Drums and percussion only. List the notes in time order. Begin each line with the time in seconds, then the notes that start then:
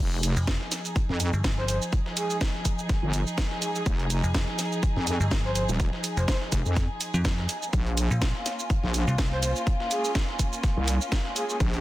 0.12 closed hi-hat
0.23 closed hi-hat, open hi-hat, shaker
0.37 shaker
0.47 kick, snare, closed hi-hat, shaker
0.61 snare
0.72 snare, closed hi-hat, open hi-hat, shaker
0.85 shaker
0.96 kick, closed hi-hat, shaker
1.09 snare
1.20 closed hi-hat, open hi-hat, shaker
1.33 shaker
1.44 kick, snare, closed hi-hat, shaker
1.58 snare
1.68 closed hi-hat, open hi-hat, shaker
1.82 shaker
1.93 kick, closed hi-hat, shaker
2.06 snare
2.17 closed hi-hat, open hi-hat, shaker
2.30 closed hi-hat, shaker
2.41 kick, snare, closed hi-hat, shaker
2.54 snare
2.65 kick, closed hi-hat, open hi-hat, shaker
2.79 shaker
2.89 kick, snare, closed hi-hat, shaker
3.13 closed hi-hat, open hi-hat, shaker
3.27 shaker
3.38 kick, snare, closed hi-hat, shaker
3.51 snare
3.62 closed hi-hat, open hi-hat, shaker
3.75 shaker
3.86 kick, closed hi-hat, shaker
3.99 closed hi-hat
4.10 closed hi-hat, open hi-hat, shaker
4.24 shaker
4.34 kick, snare, closed hi-hat, shaker
4.48 snare
4.59 snare, closed hi-hat, open hi-hat, shaker
4.72 shaker
4.83 kick, closed hi-hat, shaker
4.96 snare
5.07 closed hi-hat, open hi-hat, shaker
5.21 shaker
5.31 kick, snare, closed hi-hat, shaker
5.45 snare
5.55 closed hi-hat, open hi-hat, shaker
5.69 shaker
5.80 kick, closed hi-hat, shaker
5.93 snare
6.04 closed hi-hat, open hi-hat, shaker
6.17 closed hi-hat, shaker
6.28 kick, snare, closed hi-hat, shaker
6.41 snare
6.52 kick, closed hi-hat, open hi-hat, shaker
6.66 shaker
6.76 kick, snare, closed hi-hat, shaker
7.01 closed hi-hat, open hi-hat, shaker
7.14 shaker
7.25 kick, snare, closed hi-hat, shaker
7.38 snare
7.49 closed hi-hat, open hi-hat, shaker
7.62 shaker
7.73 kick, closed hi-hat, shaker
7.87 closed hi-hat
7.97 closed hi-hat, open hi-hat, shaker
8.11 shaker
8.22 kick, snare, closed hi-hat, shaker
8.35 snare
8.46 snare, closed hi-hat, open hi-hat, shaker
8.59 shaker
8.70 kick, closed hi-hat, shaker
8.84 snare
8.94 closed hi-hat, open hi-hat, shaker
9.08 shaker
9.18 kick, snare, closed hi-hat, shaker
9.32 snare
9.43 closed hi-hat, open hi-hat, shaker
9.56 shaker
9.67 kick, closed hi-hat, shaker
9.80 snare
9.91 closed hi-hat, open hi-hat, shaker
10.04 closed hi-hat, shaker
10.15 kick, snare, closed hi-hat, shaker
10.29 snare
10.39 kick, closed hi-hat, open hi-hat, shaker
10.53 shaker
10.63 kick, snare, closed hi-hat, shaker
10.88 closed hi-hat, open hi-hat, shaker
11.01 shaker
11.12 kick, snare, closed hi-hat, shaker
11.25 snare
11.36 closed hi-hat, open hi-hat, shaker
11.50 shaker
11.60 kick, closed hi-hat, shaker
11.74 closed hi-hat